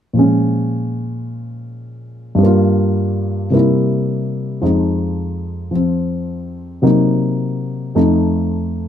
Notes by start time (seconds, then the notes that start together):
0.13 A#2 F3 G#3
0.19 C#4
2.35 G2 G3
2.43 A#3 F4
3.50 C3 G3 A#3
3.55 E4
4.62 F2 F3 G#3 D#4
5.71 F3
5.75 C4
6.82 C3 F#3 A#3 D#4
7.95 F2 F3 A3 D#4